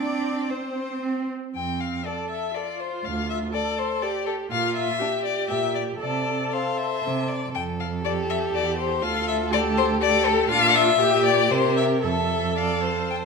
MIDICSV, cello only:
0, 0, Header, 1, 2, 480
1, 0, Start_track
1, 0, Key_signature, -1, "major"
1, 0, Tempo, 524476
1, 1419, Time_signature, 3, 2, 24, 8
1, 1882, Tempo, 490998
1, 5242, Tempo, 509771
1, 7642, Tempo, 491803
1, 10522, Tempo, 525394
1, 12584, End_track
2, 0, Start_track
2, 0, Title_t, "Cello"
2, 0, Program_c, 0, 42
2, 0, Note_on_c, 0, 62, 70
2, 454, Note_on_c, 0, 60, 54
2, 468, Note_off_c, 0, 62, 0
2, 1182, Note_off_c, 0, 60, 0
2, 1418, Note_on_c, 0, 41, 45
2, 1805, Note_off_c, 0, 41, 0
2, 2847, Note_on_c, 0, 38, 55
2, 3250, Note_off_c, 0, 38, 0
2, 4279, Note_on_c, 0, 46, 68
2, 4680, Note_off_c, 0, 46, 0
2, 5242, Note_on_c, 0, 46, 64
2, 5643, Note_off_c, 0, 46, 0
2, 5723, Note_on_c, 0, 48, 63
2, 6129, Note_off_c, 0, 48, 0
2, 6690, Note_on_c, 0, 48, 62
2, 7092, Note_off_c, 0, 48, 0
2, 7171, Note_on_c, 0, 41, 61
2, 8087, Note_off_c, 0, 41, 0
2, 8126, Note_on_c, 0, 40, 62
2, 8597, Note_on_c, 0, 38, 73
2, 8612, Note_off_c, 0, 40, 0
2, 10026, Note_off_c, 0, 38, 0
2, 10032, Note_on_c, 0, 46, 86
2, 10484, Note_off_c, 0, 46, 0
2, 10520, Note_on_c, 0, 46, 87
2, 10987, Note_on_c, 0, 48, 85
2, 11001, Note_off_c, 0, 46, 0
2, 11471, Note_on_c, 0, 41, 69
2, 11485, Note_off_c, 0, 48, 0
2, 12584, Note_off_c, 0, 41, 0
2, 12584, End_track
0, 0, End_of_file